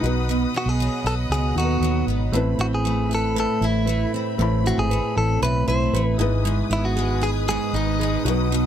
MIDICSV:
0, 0, Header, 1, 7, 480
1, 0, Start_track
1, 0, Key_signature, 4, "major"
1, 0, Tempo, 514580
1, 260, Time_signature, 4, 2, 24, 8
1, 8079, End_track
2, 0, Start_track
2, 0, Title_t, "String section"
2, 0, Program_c, 0, 48
2, 0, Note_on_c, 0, 71, 79
2, 0, Note_on_c, 0, 87, 81
2, 19, Note_on_c, 0, 75, 74
2, 21, Note_on_c, 0, 78, 69
2, 2145, Note_off_c, 0, 71, 0
2, 2145, Note_off_c, 0, 87, 0
2, 2156, Note_off_c, 0, 75, 0
2, 2157, Note_off_c, 0, 78, 0
2, 2174, Note_on_c, 0, 57, 78
2, 2174, Note_on_c, 0, 83, 71
2, 5740, Note_off_c, 0, 83, 0
2, 5741, Note_off_c, 0, 57, 0
2, 5767, Note_on_c, 0, 87, 90
2, 5769, Note_on_c, 0, 71, 75
2, 5769, Note_on_c, 0, 80, 72
2, 7675, Note_off_c, 0, 80, 0
2, 7692, Note_on_c, 0, 78, 70
2, 7693, Note_on_c, 0, 75, 71
2, 8079, Note_off_c, 0, 71, 0
2, 8079, Note_off_c, 0, 75, 0
2, 8079, Note_off_c, 0, 78, 0
2, 8079, Note_off_c, 0, 87, 0
2, 8079, End_track
3, 0, Start_track
3, 0, Title_t, "Clean electric guitar"
3, 0, Program_c, 1, 27
3, 537, Note_on_c, 1, 66, 91
3, 643, Note_off_c, 1, 66, 0
3, 643, Note_on_c, 1, 68, 98
3, 994, Note_off_c, 1, 68, 0
3, 997, Note_on_c, 1, 69, 109
3, 1060, Note_off_c, 1, 69, 0
3, 1231, Note_on_c, 1, 68, 109
3, 1470, Note_off_c, 1, 68, 0
3, 1474, Note_on_c, 1, 66, 84
3, 1913, Note_off_c, 1, 66, 0
3, 2434, Note_on_c, 1, 66, 95
3, 2481, Note_off_c, 1, 66, 0
3, 2561, Note_on_c, 1, 68, 97
3, 2920, Note_off_c, 1, 68, 0
3, 2934, Note_on_c, 1, 69, 109
3, 3141, Note_off_c, 1, 69, 0
3, 3170, Note_on_c, 1, 69, 119
3, 3401, Note_off_c, 1, 69, 0
3, 3402, Note_on_c, 1, 64, 88
3, 3837, Note_off_c, 1, 64, 0
3, 4357, Note_on_c, 1, 66, 82
3, 4469, Note_on_c, 1, 68, 93
3, 4471, Note_off_c, 1, 66, 0
3, 4825, Note_off_c, 1, 68, 0
3, 4828, Note_on_c, 1, 69, 94
3, 5060, Note_off_c, 1, 69, 0
3, 5064, Note_on_c, 1, 71, 115
3, 5298, Note_off_c, 1, 71, 0
3, 5302, Note_on_c, 1, 72, 106
3, 5628, Note_off_c, 1, 72, 0
3, 5628, Note_on_c, 1, 71, 106
3, 5747, Note_off_c, 1, 71, 0
3, 6277, Note_on_c, 1, 64, 87
3, 6389, Note_on_c, 1, 66, 95
3, 6391, Note_off_c, 1, 64, 0
3, 6744, Note_on_c, 1, 68, 106
3, 6755, Note_off_c, 1, 66, 0
3, 6808, Note_off_c, 1, 68, 0
3, 6985, Note_on_c, 1, 68, 118
3, 7226, Note_on_c, 1, 63, 88
3, 7229, Note_off_c, 1, 68, 0
3, 7669, Note_off_c, 1, 63, 0
3, 8079, End_track
4, 0, Start_track
4, 0, Title_t, "Nylon-string guitar"
4, 0, Program_c, 2, 24
4, 2179, Note_on_c, 2, 60, 90
4, 2185, Note_on_c, 2, 71, 76
4, 2409, Note_on_c, 2, 64, 67
4, 2646, Note_off_c, 2, 71, 0
4, 2650, Note_on_c, 2, 71, 76
4, 2881, Note_off_c, 2, 64, 0
4, 2884, Note_on_c, 2, 64, 64
4, 3125, Note_off_c, 2, 71, 0
4, 3129, Note_on_c, 2, 71, 76
4, 3365, Note_off_c, 2, 64, 0
4, 3369, Note_on_c, 2, 64, 61
4, 3597, Note_off_c, 2, 71, 0
4, 3601, Note_on_c, 2, 71, 72
4, 3841, Note_off_c, 2, 60, 0
4, 3852, Note_on_c, 2, 60, 65
4, 4078, Note_off_c, 2, 60, 0
4, 4089, Note_on_c, 2, 60, 92
4, 4093, Note_off_c, 2, 71, 0
4, 4097, Note_on_c, 2, 71, 69
4, 4325, Note_off_c, 2, 64, 0
4, 4329, Note_on_c, 2, 64, 64
4, 4570, Note_off_c, 2, 71, 0
4, 4574, Note_on_c, 2, 71, 75
4, 4810, Note_off_c, 2, 64, 0
4, 4814, Note_on_c, 2, 64, 70
4, 5055, Note_off_c, 2, 71, 0
4, 5059, Note_on_c, 2, 71, 67
4, 5289, Note_off_c, 2, 64, 0
4, 5292, Note_on_c, 2, 64, 64
4, 5533, Note_off_c, 2, 71, 0
4, 5537, Note_on_c, 2, 71, 75
4, 5774, Note_off_c, 2, 60, 0
4, 5783, Note_on_c, 2, 59, 83
4, 6010, Note_off_c, 2, 59, 0
4, 6014, Note_on_c, 2, 59, 90
4, 6015, Note_off_c, 2, 71, 0
4, 6018, Note_on_c, 2, 68, 71
4, 6241, Note_off_c, 2, 64, 0
4, 6245, Note_on_c, 2, 63, 67
4, 6480, Note_off_c, 2, 68, 0
4, 6491, Note_on_c, 2, 68, 76
4, 6724, Note_off_c, 2, 63, 0
4, 6727, Note_on_c, 2, 63, 71
4, 6954, Note_off_c, 2, 68, 0
4, 6965, Note_on_c, 2, 68, 70
4, 7210, Note_off_c, 2, 63, 0
4, 7213, Note_on_c, 2, 63, 62
4, 7445, Note_off_c, 2, 68, 0
4, 7457, Note_on_c, 2, 68, 78
4, 7694, Note_on_c, 2, 54, 86
4, 7746, Note_off_c, 2, 68, 0
4, 7923, Note_off_c, 2, 54, 0
4, 7934, Note_on_c, 2, 54, 82
4, 7936, Note_off_c, 2, 63, 0
4, 7940, Note_on_c, 2, 63, 70
4, 8079, Note_off_c, 2, 54, 0
4, 8079, Note_off_c, 2, 59, 0
4, 8079, Note_off_c, 2, 63, 0
4, 8079, End_track
5, 0, Start_track
5, 0, Title_t, "Felt piano"
5, 0, Program_c, 3, 0
5, 0, Control_c, 3, 64, 127
5, 7, Note_on_c, 3, 63, 70
5, 27, Note_on_c, 3, 66, 64
5, 34, Control_c, 3, 64, 0
5, 50, Note_on_c, 3, 71, 85
5, 179, Control_c, 3, 64, 127
5, 1423, Note_off_c, 3, 63, 0
5, 1434, Note_off_c, 3, 66, 0
5, 1445, Note_off_c, 3, 71, 0
5, 1453, Note_on_c, 3, 63, 52
5, 1467, Note_on_c, 3, 66, 47
5, 1478, Note_on_c, 3, 69, 49
5, 1526, Note_off_c, 3, 69, 0
5, 1534, Note_on_c, 3, 71, 58
5, 2166, Note_on_c, 3, 57, 85
5, 2175, Note_on_c, 3, 59, 72
5, 2176, Note_off_c, 3, 63, 0
5, 2183, Note_off_c, 3, 66, 0
5, 2184, Note_on_c, 3, 60, 76
5, 2188, Control_c, 3, 64, 0
5, 2190, Note_off_c, 3, 71, 0
5, 2191, Note_on_c, 3, 64, 71
5, 2204, Note_on_c, 3, 71, 87
5, 2381, Control_c, 3, 64, 127
5, 4055, Note_off_c, 3, 57, 0
5, 4059, Note_off_c, 3, 59, 0
5, 4064, Note_off_c, 3, 60, 0
5, 4067, Note_off_c, 3, 64, 0
5, 4073, Note_off_c, 3, 71, 0
5, 4087, Note_on_c, 3, 57, 83
5, 4104, Note_on_c, 3, 60, 75
5, 4116, Note_on_c, 3, 64, 73
5, 4122, Note_on_c, 3, 83, 91
5, 5739, Note_off_c, 3, 57, 0
5, 5748, Note_off_c, 3, 60, 0
5, 5754, Note_off_c, 3, 64, 0
5, 5757, Note_off_c, 3, 83, 0
5, 5763, Note_on_c, 3, 56, 75
5, 5777, Note_on_c, 3, 59, 72
5, 5783, Note_on_c, 3, 63, 68
5, 5790, Control_c, 3, 64, 0
5, 5791, Note_on_c, 3, 52, 64
5, 5801, Note_on_c, 3, 71, 83
5, 5957, Control_c, 3, 64, 127
5, 7654, Note_off_c, 3, 56, 0
5, 7661, Note_off_c, 3, 59, 0
5, 7664, Note_off_c, 3, 63, 0
5, 7668, Note_off_c, 3, 52, 0
5, 7673, Note_off_c, 3, 71, 0
5, 7692, Note_on_c, 3, 63, 69
5, 7710, Control_c, 3, 64, 0
5, 7717, Note_on_c, 3, 66, 69
5, 7735, Note_on_c, 3, 71, 84
5, 7862, Control_c, 3, 64, 127
5, 8079, Note_off_c, 3, 63, 0
5, 8079, Note_off_c, 3, 66, 0
5, 8079, Note_off_c, 3, 71, 0
5, 8079, End_track
6, 0, Start_track
6, 0, Title_t, "Steel-string acoustic guitar"
6, 0, Program_c, 4, 25
6, 0, Note_on_c, 4, 59, 70
6, 0, Note_on_c, 4, 63, 68
6, 36, Note_on_c, 4, 47, 77
6, 260, Note_off_c, 4, 47, 0
6, 271, Note_on_c, 4, 47, 87
6, 502, Note_off_c, 4, 59, 0
6, 506, Note_on_c, 4, 59, 64
6, 749, Note_on_c, 4, 54, 69
6, 988, Note_on_c, 4, 71, 64
6, 1221, Note_off_c, 4, 47, 0
6, 1232, Note_on_c, 4, 47, 83
6, 1467, Note_off_c, 4, 63, 0
6, 1471, Note_on_c, 4, 63, 64
6, 1691, Note_off_c, 4, 54, 0
6, 1702, Note_on_c, 4, 54, 76
6, 1938, Note_off_c, 4, 59, 0
6, 1941, Note_on_c, 4, 59, 59
6, 2173, Note_off_c, 4, 47, 0
6, 2177, Note_on_c, 4, 45, 86
6, 2228, Note_off_c, 4, 54, 0
6, 2232, Note_off_c, 4, 63, 0
6, 2411, Note_off_c, 4, 59, 0
6, 2414, Note_on_c, 4, 60, 67
6, 2442, Note_off_c, 4, 71, 0
6, 2659, Note_on_c, 4, 57, 71
6, 2900, Note_on_c, 4, 71, 65
6, 3127, Note_off_c, 4, 45, 0
6, 3138, Note_on_c, 4, 45, 88
6, 3378, Note_on_c, 4, 64, 66
6, 3602, Note_off_c, 4, 57, 0
6, 3613, Note_on_c, 4, 57, 77
6, 3851, Note_off_c, 4, 60, 0
6, 3862, Note_on_c, 4, 60, 61
6, 4083, Note_off_c, 4, 45, 0
6, 4094, Note_on_c, 4, 45, 81
6, 4336, Note_off_c, 4, 60, 0
6, 4347, Note_on_c, 4, 60, 70
6, 4571, Note_off_c, 4, 57, 0
6, 4582, Note_on_c, 4, 57, 75
6, 5049, Note_off_c, 4, 45, 0
6, 5060, Note_on_c, 4, 45, 88
6, 5088, Note_off_c, 4, 71, 0
6, 5291, Note_off_c, 4, 64, 0
6, 5294, Note_on_c, 4, 64, 63
6, 5534, Note_off_c, 4, 57, 0
6, 5545, Note_on_c, 4, 57, 76
6, 5769, Note_off_c, 4, 45, 0
6, 5773, Note_on_c, 4, 44, 88
6, 5830, Note_off_c, 4, 57, 0
6, 5831, Note_off_c, 4, 60, 0
6, 6006, Note_off_c, 4, 44, 0
6, 6017, Note_on_c, 4, 44, 89
6, 6256, Note_on_c, 4, 59, 70
6, 6499, Note_on_c, 4, 56, 77
6, 6729, Note_on_c, 4, 68, 70
6, 6969, Note_off_c, 4, 44, 0
6, 6980, Note_on_c, 4, 44, 93
6, 7217, Note_off_c, 4, 64, 0
6, 7221, Note_on_c, 4, 63, 69
6, 7459, Note_off_c, 4, 56, 0
6, 7473, Note_on_c, 4, 56, 78
6, 7700, Note_off_c, 4, 44, 0
6, 7704, Note_on_c, 4, 47, 84
6, 7743, Note_off_c, 4, 68, 0
6, 7754, Note_off_c, 4, 56, 0
6, 7938, Note_off_c, 4, 47, 0
6, 7950, Note_on_c, 4, 47, 89
6, 8079, Note_off_c, 4, 47, 0
6, 8079, Note_off_c, 4, 59, 0
6, 8079, Note_off_c, 4, 63, 0
6, 8079, End_track
7, 0, Start_track
7, 0, Title_t, "Fingered electric bass"
7, 0, Program_c, 5, 33
7, 23, Note_on_c, 5, 35, 105
7, 415, Note_off_c, 5, 35, 0
7, 614, Note_on_c, 5, 35, 90
7, 813, Note_off_c, 5, 35, 0
7, 973, Note_on_c, 5, 35, 101
7, 1172, Note_off_c, 5, 35, 0
7, 1210, Note_on_c, 5, 37, 88
7, 1410, Note_off_c, 5, 37, 0
7, 1448, Note_on_c, 5, 39, 95
7, 1649, Note_off_c, 5, 39, 0
7, 1681, Note_on_c, 5, 39, 85
7, 1885, Note_off_c, 5, 39, 0
7, 1927, Note_on_c, 5, 32, 98
7, 2129, Note_off_c, 5, 32, 0
7, 2167, Note_on_c, 5, 33, 121
7, 2368, Note_off_c, 5, 33, 0
7, 2408, Note_on_c, 5, 33, 95
7, 3216, Note_off_c, 5, 33, 0
7, 3369, Note_on_c, 5, 33, 103
7, 3766, Note_off_c, 5, 33, 0
7, 4092, Note_on_c, 5, 33, 122
7, 4390, Note_off_c, 5, 33, 0
7, 4456, Note_on_c, 5, 32, 93
7, 4654, Note_off_c, 5, 32, 0
7, 4821, Note_on_c, 5, 33, 98
7, 5017, Note_off_c, 5, 33, 0
7, 5054, Note_on_c, 5, 35, 107
7, 5253, Note_off_c, 5, 35, 0
7, 5296, Note_on_c, 5, 35, 94
7, 5494, Note_off_c, 5, 35, 0
7, 5533, Note_on_c, 5, 33, 99
7, 5732, Note_off_c, 5, 33, 0
7, 5769, Note_on_c, 5, 32, 109
7, 6167, Note_off_c, 5, 32, 0
7, 6252, Note_on_c, 5, 32, 97
7, 7059, Note_off_c, 5, 32, 0
7, 7214, Note_on_c, 5, 32, 108
7, 7610, Note_off_c, 5, 32, 0
7, 7695, Note_on_c, 5, 35, 105
7, 8079, Note_off_c, 5, 35, 0
7, 8079, End_track
0, 0, End_of_file